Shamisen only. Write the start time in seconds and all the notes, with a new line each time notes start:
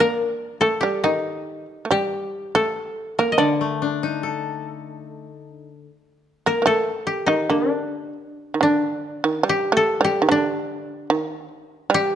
0.00 A#3
0.62 A3
0.83 G3
1.04 D#3
1.85 A3
1.91 G3
2.55 A3
3.19 A#3
3.38 D4
4.33 A#3
6.46 A#3
6.62 A3 A#3
7.28 D#3
7.50 D3
8.54 D#3
8.61 D3
9.24 D#3
9.43 G3
9.72 A3
10.01 G3
10.22 D#3
10.29 D3
11.10 D#3
11.90 G3